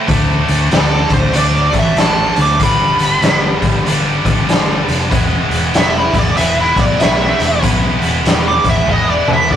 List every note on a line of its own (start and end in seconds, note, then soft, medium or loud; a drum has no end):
0.07 0.41 D2 medium
0.07 1.32 D3 medium
0.07 1.33 F#3 medium
0.07 1.33 A3 medium
0.07 1.36 D4 medium
0.07 kick medium
0.07 closed hi-hat medium
0.48 0.68 D2 medium
0.48 closed hi-hat medium
0.71 1.04 D2 medium
0.71 1.13 A4 medium
0.71 snare loud
0.71 closed hi-hat medium
1.10 1.30 D2 medium
1.10 1.34 C5 medium
1.10 kick medium
1.10 closed hi-hat medium
1.33 1.67 D2 medium
1.33 2.58 D3 medium
1.33 2.59 F#3 medium
1.33 2.59 A3 medium
1.33 2.60 D4 medium
1.33 1.76 D5 medium
1.33 closed hi-hat medium
1.73 1.93 A1 medium
1.73 kick medium
1.73 closed hi-hat medium
1.79 1.98 E5 medium
1.97 2.29 A1 medium
1.97 2.38 A5 medium
1.97 snare medium
1.97 closed hi-hat medium
2.36 2.57 D2 medium
2.36 closed hi-hat medium
2.42 2.61 D6 medium
2.60 2.92 G1 medium
2.60 3.84 G2 medium
2.60 3.85 D3 medium
2.60 3.85 G3 medium
2.60 3.88 B3 medium
2.60 3.86 D4 medium
2.60 kick medium
2.60 closed hi-hat medium
2.64 3.84 B5 loud
2.99 3.19 G1 medium
2.99 closed hi-hat medium
3.22 3.55 G1 medium
3.22 snare loud
3.22 closed hi-hat medium
3.62 3.81 G1 medium
3.62 kick medium
3.62 closed hi-hat medium
3.85 4.19 G1 medium
3.85 5.10 G2 medium
3.85 5.08 D3 medium
3.85 5.11 G3 medium
3.85 5.11 B3 medium
3.85 5.11 D4 medium
3.85 closed hi-hat medium
4.25 4.44 G1 medium
4.25 kick medium
4.25 closed hi-hat medium
4.49 4.81 G1 medium
4.49 snare medium
4.49 closed hi-hat medium
4.88 5.11 F1 medium
4.88 closed hi-hat medium
5.09 5.44 E1 medium
5.09 6.36 E3 medium
5.09 6.37 G#3 medium
5.09 6.38 B3 medium
5.09 6.39 E4 medium
5.09 kick loud
5.09 closed hi-hat medium
5.50 5.70 E1 medium
5.50 closed hi-hat medium
5.74 6.07 E1 medium
5.74 5.96 E5 medium
5.74 snare loud
5.74 closed hi-hat medium
5.97 6.17 E4 medium
6.13 6.33 E1 medium
6.13 kick medium
6.13 closed hi-hat medium
6.18 6.37 D5 medium
6.36 6.70 E1 medium
6.36 7.60 E3 medium
6.36 7.62 G#3 medium
6.36 7.62 B3 medium
6.36 7.64 E4 medium
6.36 6.57 E5 medium
6.36 closed hi-hat medium
6.61 6.80 E4 medium
6.76 6.96 B1 medium
6.76 7.00 D5 medium
6.76 kick medium
6.76 closed hi-hat medium
7.00 7.33 B1 medium
7.00 7.61 E5 loud
7.00 snare loud
7.00 closed hi-hat medium
7.40 7.59 E1 medium
7.40 closed hi-hat medium
7.61 7.95 B1 medium
7.61 8.84 E3 medium
7.61 8.86 G#3 medium
7.61 8.87 B3 medium
7.61 8.88 E4 medium
7.61 kick medium
7.61 closed hi-hat medium
8.02 8.21 E1 medium
8.02 closed hi-hat medium
8.24 8.57 E1 medium
8.24 snare loud
8.24 closed hi-hat medium
8.48 8.68 D6 medium
8.64 8.84 E1 medium
8.64 kick medium
8.64 closed hi-hat medium
8.69 8.88 E5 medium
8.85 9.20 E1 medium
8.85 9.56 E3 medium
8.85 9.56 G#3 medium
8.85 9.56 B3 medium
8.85 kick medium
8.90 9.56 E4 medium
8.90 9.10 D#5 medium
9.10 9.30 D5 medium
9.28 9.47 E1 medium
9.28 mid tom medium
9.33 9.52 E5 medium
9.51 9.56 E1 medium
9.51 9.56 D5 medium
9.51 kick medium